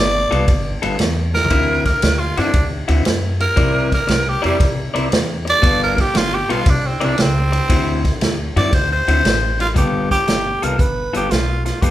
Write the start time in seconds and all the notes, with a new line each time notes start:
Already playing: G1 D5
0.31 C2 G3 B3 F4 A4, ride
0.48 G1, muted clean electric guitar stroke, kick, ride
0.82 G1 G3 B3 F4 A4, ride
0.98 E2, muted clean electric guitar stroke, snare, ride
1.35 A#4, muted clean electric guitar stroke, snare
1.44 floor tom
1.50 D2 D3 C4 E4 F#4, kick, ride
1.85 A#4, muted clean electric guitar stroke, kick, snare, ride
2.02 D2, muted clean electric guitar stroke, snare, ride
2.19 F4
2.37 G2 D3 C4 D4 E4 F#4, snare, ride
2.54 D2, muted clean electric guitar stroke, kick, ride
2.88 D2 D3 C4 E4 F#4, ride
3.05 F#2, muted clean electric guitar stroke, snare, ride
3.40 A#4, muted clean electric guitar stroke, ride
3.56 C2 C4 E4 A#4 D5, kick, ride
3.92 A#4, muted clean electric guitar stroke, kick, snare, ride
4.07 C2, muted clean electric guitar stroke, snare, ride
4.29 G4
4.42 F2 G3 C4 E4 A#4 D5, ride
4.59 C2, muted clean electric guitar stroke, kick, snare, ride
4.94 C2 C4 E4 A#4 D5, ride
5.10 E2, muted clean electric guitar stroke, snare, ride
5.45 muted clean electric guitar stroke, snare, ride
5.50 D5
5.62 G1 G3 B3 F4 A4, kick, ride
5.83 A#4
5.97 muted clean electric guitar stroke, kick, snare, ride
6.01 G4
6.14 G1 F4, muted clean electric guitar stroke, snare, ride
6.34 G4
6.49 B1 G3 B3 F4 A4, ride
6.65 C2, muted clean electric guitar stroke, kick, snare, ride
6.70 D4
6.87 C4
7.00 C2 C4 E4 A#4 D5, ride
7.04 D4
7.18 C#2 C4, muted clean electric guitar stroke, snare, ride
7.52 muted clean electric guitar stroke, ride
7.69 D2 D3 C4 E4 F#4, kick, ride
8.05 muted clean electric guitar stroke, kick, snare, ride
8.21 D2, muted clean electric guitar stroke, snare, ride
8.56 G2 D3 C4 E4 F#4 D5, snare, ride
8.73 D2 C5, muted clean electric guitar stroke, kick, snare, ride
8.92 C5
9.08 D2 D3 C4 E4 F#4, ride
9.24 A1, muted clean electric guitar stroke, snare, ride
9.60 F4, muted clean electric guitar stroke, snare, ride
9.74 G1 G3 B3 F4 G4 A4, kick, closed hi-hat
10.10 G4, muted clean electric guitar stroke, kick, snare, closed hi-hat
10.27 G1, muted clean electric guitar stroke, snare, closed hi-hat
10.62 C2 G3 B3 F4 A4 A#4, closed hi-hat
10.79 G1 B4, muted clean electric guitar stroke, kick, closed hi-hat
11.13 G1 G3 B3 F4 G4 A4, closed hi-hat
11.30 B1 F4, muted clean electric guitar stroke, snare, closed hi-hat
11.65 F4, muted clean electric guitar stroke, snare, closed hi-hat
11.82 G1 G3 B3 F4 G4 A4, kick, closed hi-hat